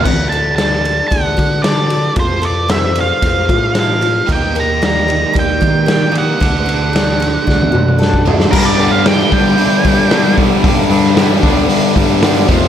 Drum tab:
CC |x---------------|----------------|----------------|----------------|
RD |--x-x-x-x-x-x-x-|x-x-x-x-x-x-x-x-|x-x-x-x-x-x-x-x-|x-x-x-x---------|
HH |----------------|----------------|----------------|----------------|
SD |----oo------o---|----o-------o---|----oo------o---|----oo--o---o--o|
T1 |----------------|----------------|----------------|---------o------|
T2 |----------------|----------------|----------------|----------oo----|
FT |----------------|----------------|----------------|--------------o-|
BD |o-------o-o-----|o-------o-o-----|o-------o-o-----|o-------o----o--|

CC |x---------------|----------------|
RD |----------------|----------------|
HH |--o-o-o-o-o-o-o-|o-o-o-o-o-o-o-o-|
SD |----o-------o---|---oo-------o---|
T1 |----------------|----------------|
T2 |----------------|----------------|
FT |----------------|----------------|
BD |o-----o---o---o-|o-----o---o---o-|